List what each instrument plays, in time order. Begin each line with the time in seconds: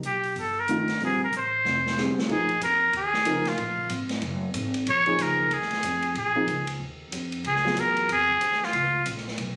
0.03 upright bass B1, muted trumpet G4, closed hi-hat
0.23 open hi-hat
0.36 upright bass G1, open hi-hat
0.40 muted trumpet A4
0.60 muted trumpet A#4
0.68 grand piano D#3 A3 D4 F4, closed hi-hat
0.88 snare, open hi-hat
1.00 upright bass A#1, grand piano D3 G3 C4 F4, open hi-hat
1.05 muted trumpet G#4
1.24 muted trumpet A#4
1.32 upright bass A1, closed hi-hat
1.37 muted trumpet C5
1.65 upright bass F1, snare
1.86 snare
1.97 grand piano D3 G3 C4 G#4, snare
2.17 muted upright bass stroke, snare
2.29 upright bass A#1, grand piano F3 A#3 D#4 G#4, muted trumpet G#4, kick, crash
2.49 ride
2.60 upright bass F2, muted trumpet A#4, hi-hat pedal, ride
2.93 upright bass D#2, muted trumpet G#4, ride
3.13 snare
3.25 upright bass C#2, grand piano F3 A#3 D#4 A#4, hi-hat pedal, ride
3.45 muted trumpet F4, snare, ride
3.58 upright bass A#1, ride
3.77 kick
3.89 upright bass G#1, hi-hat pedal, ride
4.09 snare, ride
4.22 upright bass F#1, ride
4.54 upright bass G#1, hi-hat pedal, ride
4.74 ride
4.86 upright bass A#1, muted trumpet C#5, ride
5.06 grand piano F3 A#3 D#4 G#4, kick, ride
5.18 upright bass C#2, muted trumpet A#4, snare, hi-hat pedal, ride
5.38 kick
5.51 upright bass D#2, muted trumpet G#4, ride
5.62 snare
5.71 snare, ride
5.83 upright bass F2, hi-hat pedal, ride
6.02 ride
6.15 upright bass A#1, muted trumpet G#4, ride
6.35 grand piano F3 A#3 D#4 G#4
6.47 upright bass C#2, hi-hat pedal, ride
6.67 ride
6.80 upright bass D#2
7.12 upright bass F2, hi-hat pedal, ride
7.32 ride
7.44 upright bass C#2, muted trumpet G#4, ride
7.56 snare
7.65 grand piano F#3 B3 F4 G#4, snare
7.76 upright bass E2, hi-hat pedal, ride
7.80 muted trumpet A#4
7.96 ride
8.09 upright bass F2, ride
8.13 muted trumpet G#4
8.29 kick
8.41 upright bass D#2, hi-hat pedal, ride
8.52 snare
8.63 muted trumpet F4, snare
8.73 upright bass C#2, ride
9.06 upright bass A#1, hi-hat pedal, ride
9.17 snare
9.28 snare
9.38 upright bass B1, ride